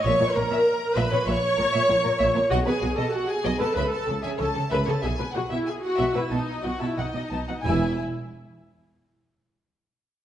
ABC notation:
X:1
M:4/4
L:1/16
Q:1/4=94
K:Bmix
V:1 name="Violin section"
c'2 ^a4 b2 c'8 | f g2 a f g2 a b a2 g a2 b a | g2 f e g f2 e d2 f e d4 | e2 z12 z2 |]
V:2 name="Violin section"
e c ^A e z2 e c e z A e c A e c | d B F d z2 d B e z A e c A e c | e B G e z2 e B a z d a f d a f | g2 z12 z2 |]
V:3 name="Viola section"
c2 ^A4 B2 c8 | F G2 A F G2 A B A2 G A2 B A | G2 F E G F2 E D2 F E D4 | E2 z12 z2 |]
V:4 name="Cello section" clef=bass
^A,, A,, A,, A,, z2 A,, A,, A,, z A,, A,, A,, A,, A,, A,, | B,, B,, B,, B,, z2 B,, B,, C, z C, C, C, C, C, C, | B,, B,, B,, B,, z2 B,, B,, B,, z B,, B,, B,, B,, B,, B,, | E,,2 z12 z2 |]
V:5 name="Double bass section" clef=bass
^A,,, z A,,, z3 A,,, z A,,, z A,,, z A,,, z A,,, z | B,,, z B,,, z3 B,,, z C,, z C,, z C,, z C,, z | B,,, z B,,, z3 B,,, z B,,, z B,,, z B,,, z B,,, z | E,,,2 z12 z2 |]